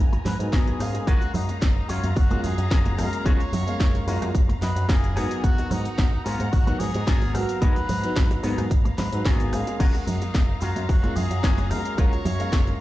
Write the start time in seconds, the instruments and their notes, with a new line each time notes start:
Already playing: string section G#5 A#5
0.00 picked electric bass G#1
0.12 muted clean electric guitar stroke, closed hi-hat, high conga
0.25 picked electric bass G#2, trumpet section B4, muted clean electric guitar stroke, snare, open hi-hat, high bongo, low conga, cabasa
0.39 picked electric bass G#2, grand piano F#3 B3 D#4 A#4, closed hi-hat, cabasa
0.52 picked electric bass G#1, clean electric guitar B3 F#4 G#4 A#4, trumpet section G#4, kick, snare, open hi-hat, cabasa
0.67 closed hi-hat, high bongo
0.79 picked electric bass G#2, grand piano G#3 A#3 C#4 F5, cross-stick, open hi-hat, cabasa
0.94 closed hi-hat, high bongo, cabasa
1.07 picked electric bass F#1, string section F#3 F5 A#5, clean electric guitar C#4 F4 F#4 A#4, trumpet section F#4, kick, closed hi-hat, cabasa
1.21 closed hi-hat, high bongo, cabasa
1.34 picked electric bass F#2, trumpet section D#4, muted clean electric guitar stroke, open hi-hat, low conga, cabasa
1.49 muted picked electric bass stroke, closed hi-hat, high bongo, cabasa
1.61 picked electric bass F#1, kick, cross-stick, snare, closed hi-hat, cabasa
1.76 muted clean electric guitar stroke
1.88 picked electric bass F#2, clean electric guitar C#4 F4 F#4 C#5, trumpet section F4, open hi-hat, high bongo, cabasa
2.04 picked electric bass F#2, closed hi-hat, high conga, cabasa
2.16 picked electric bass F#1, trumpet section F#4, kick, open hi-hat, high bongo, cabasa
2.30 grand piano G#3 A#3 C#4 F4, muted clean electric guitar stroke, closed hi-hat, high conga
2.44 picked electric bass F#2, trumpet section G#4, muted clean electric guitar stroke, open hi-hat, low conga, cabasa
2.58 picked electric bass F#2, closed hi-hat, high bongo, cabasa
2.71 picked electric bass F#1, clean electric guitar C#4 F4 F#4 A#4, kick, snare, closed hi-hat, cabasa
2.85 closed hi-hat, high bongo, high conga
2.98 picked electric bass F#2, grand piano G#3 A#3 C#4 G#4, trumpet section A#4, cross-stick, open hi-hat, cabasa
3.13 closed hi-hat, cabasa
3.25 picked electric bass F#1, grand piano G#3 A#3 C#4 F4, clean electric guitar C#4 F4 F#4 G#4, trumpet section C#5, kick, closed hi-hat, high bongo, cabasa
3.40 closed hi-hat, cabasa
3.52 picked electric bass F#2, muted clean electric guitar stroke, open hi-hat, high bongo, low conga, cabasa
3.67 grand piano G#3 A#3 C#4 F5, muted picked electric bass stroke, closed hi-hat, cabasa
3.80 picked electric bass F#1, kick, cross-stick, snare, closed hi-hat, cabasa
3.94 muted clean electric guitar stroke, closed hi-hat, high bongo
4.07 picked electric bass F#2, grand piano G#3 A#3 C#4 F4, clean electric guitar C#4 F4 F#4 A#4, open hi-hat, cabasa
4.22 picked electric bass F#2, cross-stick, closed hi-hat, high bongo, cabasa
4.35 picked electric bass F#1, kick, closed hi-hat, cabasa
4.49 muted clean electric guitar stroke, closed hi-hat, high conga
4.61 picked electric bass F#2, trumpet section B4, clean electric guitar D#5, muted clean electric guitar stroke, snare, open hi-hat, high bongo, low conga, cabasa
4.76 picked electric bass F#2, closed hi-hat, cabasa
4.88 picked electric bass F#1, clean electric guitar C#4 F4 F#4 A#4 F5, trumpet section G#4, kick, snare, open hi-hat, high bongo, cabasa
5.04 closed hi-hat
5.15 picked electric bass G#2, grand piano F#3 B3 D#4 A#4, clean electric guitar B3 F#4 G#4 A#4 G#5, string section F#5 A#5, cross-stick, open hi-hat, cabasa
5.31 closed hi-hat, high bongo, cabasa
5.43 picked electric bass G#1, trumpet section F#4, kick, closed hi-hat, cabasa
5.58 closed hi-hat, high bongo, cabasa
5.70 picked electric bass G#2, trumpet section D#4, muted clean electric guitar stroke, open hi-hat, low conga, cabasa
5.85 muted picked electric bass stroke, closed hi-hat, cabasa
5.98 picked electric bass G#1, kick, cross-stick, snare, closed hi-hat, high bongo, cabasa
6.12 muted clean electric guitar stroke
6.25 picked electric bass G#2, clean electric guitar B3 F#4 G#4 A#4, trumpet section F4, open hi-hat, high bongo, cabasa
6.39 picked electric bass G#2, closed hi-hat, high conga, cabasa
6.52 picked electric bass G#1, trumpet section F#4, kick, open hi-hat, cabasa
6.66 grand piano F#3 A#3 B3 D#4, muted clean electric guitar stroke, closed hi-hat, high bongo, high conga
6.80 picked electric bass G#2, trumpet section G#4, muted clean electric guitar stroke, open hi-hat, low conga, cabasa
6.94 picked electric bass G#2, closed hi-hat, high bongo, cabasa
7.06 picked electric bass G#1, clean electric guitar B3 F#4 G#4 A#4, kick, snare, closed hi-hat, cabasa
7.22 closed hi-hat, high conga
7.34 picked electric bass G#2, grand piano F#3 A#3 B3 F#4, trumpet section A#4, string section F5, cross-stick, open hi-hat, high bongo, cabasa
7.49 closed hi-hat, cabasa
7.61 picked electric bass G#1, grand piano F#3 A#3 B3 D#4, clean electric guitar B3 F#4 G#4 A#4, trumpet section B4, kick, closed hi-hat, high bongo, cabasa
7.76 closed hi-hat, high conga, cabasa
7.89 picked electric bass G#2, muted clean electric guitar stroke, open hi-hat, low conga, cabasa
8.03 grand piano F#3 B3 D#4 B4, muted picked electric bass stroke, closed hi-hat, high bongo, cabasa
8.16 picked electric bass G#1, kick, cross-stick, snare, closed hi-hat, cabasa
8.30 muted clean electric guitar stroke, closed hi-hat, high bongo
8.43 picked electric bass G#2, grand piano F#3 A#3 B3 D#4, clean electric guitar B3 F#4 G#4 A#4, open hi-hat, cabasa
8.58 picked electric bass G#2, cross-stick, closed hi-hat, high conga, cabasa
8.70 picked electric bass G#1, kick, closed hi-hat, high bongo, cabasa
8.85 muted clean electric guitar stroke, closed hi-hat, high conga, cabasa
8.98 picked electric bass G#2, trumpet section B4, muted clean electric guitar stroke, snare, open hi-hat, high bongo, low conga, cabasa
9.12 picked electric bass G#2, grand piano F#3 B3 D#4, closed hi-hat, cabasa
9.25 picked electric bass G#1, clean electric guitar B3 F#4 G#4 A#4, trumpet section G#4, kick, snare, open hi-hat, cabasa
9.39 closed hi-hat, high bongo, cabasa
9.52 picked electric bass G#2, grand piano G#3 A#3 C#4 F5, cross-stick, open hi-hat, cabasa
9.67 closed hi-hat, high bongo, cabasa
9.79 picked electric bass F#1, string section F#3 A#5, clean electric guitar C#4 F4 F#4 A#4, trumpet section F#4, kick, closed hi-hat, crash, cabasa
9.94 closed hi-hat, high bongo, cabasa
10.06 picked electric bass F#2, trumpet section D#4, muted clean electric guitar stroke, open hi-hat, low conga, cabasa
10.21 muted picked electric bass stroke, closed hi-hat, high bongo, cabasa
10.35 picked electric bass F#1, kick, cross-stick, snare, closed hi-hat, cabasa
10.49 muted clean electric guitar stroke
10.61 picked electric bass F#2, clean electric guitar C#4 F4 F#4 A#4, trumpet section F4, open hi-hat, high bongo, cabasa
10.76 picked electric bass F#2, closed hi-hat, high conga, cabasa
10.89 picked electric bass F#1, trumpet section F#4, kick, open hi-hat, high bongo, cabasa
11.03 grand piano G#3 A#3 C#4 F4, muted clean electric guitar stroke, closed hi-hat, high conga
11.16 picked electric bass F#2, trumpet section G#4, muted clean electric guitar stroke, open hi-hat, low conga, cabasa
11.30 picked electric bass F#2, closed hi-hat, high bongo, cabasa
11.43 picked electric bass F#1, clean electric guitar C#4 F4 F#4 A#4, kick, snare, closed hi-hat, cabasa
11.58 closed hi-hat, high bongo, high conga
11.70 picked electric bass F#2, grand piano G#3 A#3 C#4 G#4, trumpet section A#4, cross-stick, open hi-hat, cabasa
11.85 closed hi-hat, cabasa
11.97 picked electric bass F#1, grand piano G#3 A#3 C#4 F4, clean electric guitar C#4 F4 F#4 A#4, trumpet section C#5, kick, closed hi-hat, high bongo, cabasa
12.12 closed hi-hat, cabasa
12.24 picked electric bass F#2, muted clean electric guitar stroke, open hi-hat, high bongo, low conga, cabasa
12.39 grand piano G#3 A#3 C#4 F5, muted picked electric bass stroke, closed hi-hat, cabasa
12.53 picked electric bass F#1, kick, cross-stick, snare, closed hi-hat, cabasa
12.66 muted clean electric guitar stroke, closed hi-hat, high bongo